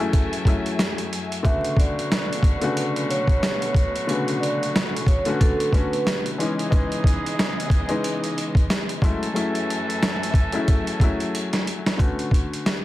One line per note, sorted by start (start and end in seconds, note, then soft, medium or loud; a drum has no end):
0.00 1.42 F#2 medium
0.00 1.08 E3 medium
0.00 0.41 F#3 medium
0.00 1.42 F#3 medium
0.00 0.42 A3 medium
0.00 1.42 A3 medium
0.00 0.43 C#4 medium
0.00 1.08 C#4 medium
0.00 0.43 E4 loud
0.00 0.42 G#4 medium
0.00 1.08 A4 medium
0.00 1.42 E5 medium
0.00 1.42 G#5 medium
0.13 kick medium
0.13 closed hi-hat loud
0.33 closed hi-hat medium
0.45 1.38 F#3 loud
0.45 1.39 A3 medium
0.45 1.39 C#4 medium
0.45 1.39 E4 loud
0.45 1.38 G#4 medium
0.45 kick medium
0.45 closed hi-hat medium
0.66 closed hi-hat soft
0.79 snare loud
0.79 closed hi-hat loud
0.98 closed hi-hat medium
1.13 closed hi-hat medium
1.32 closed hi-hat medium
1.43 6.35 B2 medium
1.43 2.52 C#3 medium
1.43 6.03 C#3 medium
1.43 2.51 D3 medium
1.43 6.02 D3 medium
1.43 6.35 F#3 medium
1.43 2.51 A3 medium
1.43 6.35 A3 medium
1.43 2.52 B3 medium
1.43 6.35 B3 medium
1.43 2.52 F#4 loud
1.43 6.03 F#4 medium
1.43 6.35 B4 medium
1.43 1.74 E5 loud
1.43 kick loud
1.43 closed hi-hat medium
1.64 closed hi-hat medium
1.77 3.06 D5 medium
1.77 kick medium
1.77 closed hi-hat medium
1.99 closed hi-hat medium
2.12 snare loud
2.12 closed hi-hat loud
2.33 closed hi-hat medium
2.43 kick loud
2.43 closed hi-hat medium
2.61 3.83 C#3 medium
2.61 3.82 D3 medium
2.61 3.82 A3 medium
2.61 3.82 B3 medium
2.61 3.83 F#4 loud
2.61 closed hi-hat medium
2.77 closed hi-hat loud
2.96 closed hi-hat medium
3.10 4.05 C#5 medium
3.10 closed hi-hat medium
3.27 kick medium
3.27 closed hi-hat soft
3.43 snare loud
3.43 closed hi-hat loud
3.62 closed hi-hat medium
3.75 kick loud
3.75 closed hi-hat medium
3.96 closed hi-hat medium
4.07 5.16 C#3 medium
4.07 5.15 D3 medium
4.07 5.15 A3 medium
4.07 5.16 B3 medium
4.07 5.16 F#4 loud
4.07 closed hi-hat medium
4.28 closed hi-hat medium
4.41 4.71 D5 medium
4.41 closed hi-hat medium
4.63 closed hi-hat medium
4.76 snare loud
4.76 closed hi-hat loud
4.96 closed hi-hat medium
5.06 5.24 C#5 medium
5.06 kick loud
5.06 closed hi-hat medium
5.25 5.70 D3 loud
5.25 5.70 A3 medium
5.25 5.70 B3 medium
5.25 5.71 C#4 medium
5.25 5.71 F#4 loud
5.25 closed hi-hat medium
5.40 5.70 A4 medium
5.40 kick medium
5.40 closed hi-hat loud
5.60 closed hi-hat medium
5.73 6.39 D3 medium
5.73 6.39 A3 medium
5.73 6.38 B3 medium
5.73 6.39 C#4 medium
5.73 6.40 F#4 loud
5.73 kick medium
5.73 closed hi-hat medium
5.93 closed hi-hat soft
6.07 snare loud
6.07 closed hi-hat loud
6.26 closed hi-hat medium
6.38 9.00 C#3 medium
6.38 6.69 E3 loud
6.38 9.00 E3 medium
6.38 8.66 E3 medium
6.38 9.00 G#3 medium
6.38 6.70 G#3 medium
6.38 9.00 B3 medium
6.38 6.70 B3 medium
6.38 6.71 C#4 medium
6.38 8.66 D#4 medium
6.38 6.71 D#4 medium
6.38 8.66 G#4 loud
6.38 9.00 D#5 medium
6.38 closed hi-hat medium
6.59 closed hi-hat medium
6.70 7.79 E3 loud
6.70 7.79 G#3 medium
6.70 7.79 B3 medium
6.70 7.80 C#4 medium
6.70 7.80 D#4 loud
6.70 kick loud
6.70 closed hi-hat medium
6.92 closed hi-hat medium
7.04 kick medium
7.04 closed hi-hat medium
7.26 closed hi-hat medium
7.39 snare loud
7.39 closed hi-hat loud
7.60 closed hi-hat medium
7.70 kick loud
7.70 closed hi-hat medium
7.89 9.02 E3 medium
7.89 9.01 G#3 medium
7.89 9.03 B3 medium
7.89 9.02 C#4 medium
7.89 9.03 D#4 loud
7.89 closed hi-hat medium
8.04 closed hi-hat loud
8.24 closed hi-hat medium
8.38 closed hi-hat medium
8.55 kick medium
8.55 closed hi-hat soft
8.70 snare loud
8.70 closed hi-hat loud
8.89 closed hi-hat medium
9.02 11.97 F#2 medium
9.02 11.63 E3 medium
9.02 9.24 F#3 medium
9.02 11.97 F#3 medium
9.02 9.25 G#3 medium
9.02 9.25 A3 medium
9.02 11.97 A3 medium
9.02 11.63 C#4 medium
9.02 9.25 C#4 medium
9.02 9.26 E4 loud
9.02 11.63 A4 medium
9.02 11.97 E5 medium
9.02 11.97 G#5 medium
9.02 kick loud
9.02 closed hi-hat medium
9.23 closed hi-hat medium
9.33 10.42 F#3 medium
9.33 10.43 A3 medium
9.33 10.43 C#4 medium
9.33 10.43 E4 loud
9.33 10.42 G#4 medium
9.33 closed hi-hat medium
9.55 closed hi-hat medium
9.70 closed hi-hat medium
9.90 closed hi-hat medium
10.03 snare loud
10.03 closed hi-hat loud
10.23 closed hi-hat medium
10.34 kick loud
10.34 closed hi-hat medium
10.52 10.97 F#3 medium
10.52 10.97 A3 medium
10.52 10.98 C#4 medium
10.52 10.98 E4 loud
10.52 10.97 G#4 medium
10.52 closed hi-hat medium
10.68 kick medium
10.68 closed hi-hat loud
10.87 closed hi-hat medium
11.00 11.93 F#3 medium
11.00 11.93 A3 medium
11.00 11.94 C#4 medium
11.00 11.94 E4 loud
11.00 11.93 G#4 medium
11.00 kick medium
11.00 closed hi-hat medium
11.20 closed hi-hat soft
11.35 closed hi-hat loud
11.53 snare medium
11.53 closed hi-hat medium
11.67 closed hi-hat medium
11.86 snare loud
11.86 closed hi-hat medium
11.97 12.85 D3 medium
11.97 12.85 A3 medium
11.97 12.85 B3 medium
11.97 12.85 C#4 medium
11.97 12.85 F#4 medium
11.97 kick loud
11.97 closed hi-hat medium
12.19 closed hi-hat soft
12.31 kick medium
12.31 closed hi-hat medium
12.53 closed hi-hat medium
12.66 snare loud
12.66 closed hi-hat medium